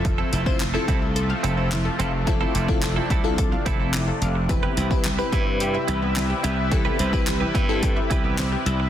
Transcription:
Already playing: F1 C3 F3 A3 C4 E4 F4 A4 E5
0.04 F3, muted clean electric guitar stroke, kick, closed hi-hat
0.18 C4 E4 A4
0.32 F1 C4 E4 A4, closed hi-hat
0.46 C4 E4 F4 C5, kick
0.60 muted clean electric guitar stroke, snare, clap, closed hi-hat
0.74 F3 C4 E4 F4 A4
0.88 C2 C4 E4 A4, kick, closed hi-hat
1.02 E4, muted clean electric guitar stroke
1.16 A4, muted clean electric guitar stroke, closed hi-hat
1.30 F5, muted clean electric guitar stroke
1.43 F1 F3 C4 E4 A4, closed hi-hat
1.57 C4 E4 A4
1.71 E4, snare, clap, closed hi-hat
1.85 A4, muted clean electric guitar stroke
1.99 F1 C4 D4 E4 A4 F5, closed hi-hat
2.13 muted clean electric guitar stroke
2.27 F3 C4 E4 F4 A4, muted clean electric guitar stroke, kick, closed hi-hat
2.41 C4 E4 A4
2.54 F1 C4 E4 A4, closed hi-hat
2.68 C4 E4 F4 A4, muted clean electric guitar stroke, kick
2.82 muted clean electric guitar stroke, snare, clap, closed hi-hat
2.96 F3 C4 E4 A4
3.10 C2 C4 E4 A4, kick, closed hi-hat
3.24 C4 E4 F4 A4, muted clean electric guitar stroke
3.38 A4, muted clean electric guitar stroke, kick, closed hi-hat
3.52 F5, muted clean electric guitar stroke
3.66 F1 F3 C4 E4 A4, kick, closed hi-hat
3.80 C4 E4 A4
3.94 E4, snare, clap, closed hi-hat
4.07 A4, muted clean electric guitar stroke
4.21 F1 F5, closed hi-hat
4.35 muted clean electric guitar stroke
4.49 E3 G3 C4 E4 G4 B4, muted clean electric guitar stroke, kick, closed hi-hat
4.63 B3 E4 G4 B4
4.77 C2 C4 E4 G4 B4, closed hi-hat
4.91 C4 E4 G4 B4, kick
5.05 muted clean electric guitar stroke, snare, clap, closed hi-hat
5.18 E3 C4 E4 G4 B4
5.32 G2 B3 E4 G4 B4, kick, closed hi-hat
5.46 C4, muted clean electric guitar stroke
5.60 G4, muted clean electric guitar stroke, closed hi-hat
5.74 E5, muted clean electric guitar stroke
5.88 C2 E3 E4 G4 B4, closed hi-hat
6.02 B3 E4 G4 B4
6.16 C4, snare, clap, closed hi-hat
6.30 G4, muted clean electric guitar stroke
6.43 C2 E4 G4 B4 E5, closed hi-hat
6.58 muted clean electric guitar stroke
6.71 E3 C4 E4 G4 A4, muted clean electric guitar stroke, kick, closed hi-hat
6.85 B3 E4 G4 B4
6.99 C2 C4 E4 G4 B4, closed hi-hat
7.13 C4 E4 G4 B4, kick
7.27 muted clean electric guitar stroke, snare, clap, closed hi-hat
7.40 E3 E4 G4 B4
7.54 G2 B3 E4 G4 B4, kick, closed hi-hat
7.69 C4 E4 G4 A4, muted clean electric guitar stroke
7.83 G4, muted clean electric guitar stroke, kick, closed hi-hat
7.96 E5, muted clean electric guitar stroke
8.10 C2 E3 E4 G4 B4, kick, closed hi-hat
8.24 B3 E4 G4 B4
8.38 C4, snare, clap, closed hi-hat
8.52 G4, muted clean electric guitar stroke
8.66 C2 E5, closed hi-hat
8.80 muted clean electric guitar stroke

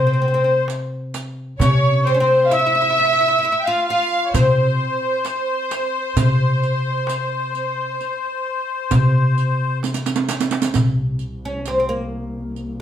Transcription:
Already playing: C3 C5
0.07 C4
0.13 C4
0.22 C4, darbuka ka
0.28 C4
0.34 C4
0.44 C4
0.68 riq, darbuka tek
1.14 riq, darbuka tek
1.59 C3 C#4 C#5, riq, darbuka dum
2.04 C4 C5, riq, darbuka ka
2.14 C#4
2.20 C4 C5
2.45 F5
2.51 E4 E5, riq, darbuka tek
2.59 E4
2.66 E4
2.75 E4
2.82 E4
2.90 E4
2.96 E4, riq
3.05 E4
3.13 E4
3.21 E4
3.28 E4
3.39 E4
3.43 E4, riq, darbuka ka
3.52 E4
3.59 G5
3.64 F4 F5
3.86 F4 F5
4.25 C#5
4.33 C3 C4 C5, riq, darbuka dum
4.80 darbuka ka
5.25 riq, darbuka tek
5.71 riq, darbuka tek
6.16 C3, riq, darbuka dum
6.62 riq, darbuka ka
7.07 riq, darbuka tek
7.53 riq, darbuka ka
8.00 riq, darbuka ka
8.91 C3, riq, darbuka dum
9.37 riq, darbuka ka
9.83 riq, darbuka tek
9.94 riq, darbuka ka
10.06 riq, darbuka tek
10.16 riq, darbuka ka
10.29 riq, darbuka tek
10.40 riq, darbuka ka
10.51 riq, darbuka tek
10.62 riq, darbuka ka
10.73 C2 C3, riq, darbuka dum
11.19 riq
11.45 C#4
11.65 C4, riq, darbuka tek
11.80 C4
11.89 A#3
12.56 riq, darbuka ka

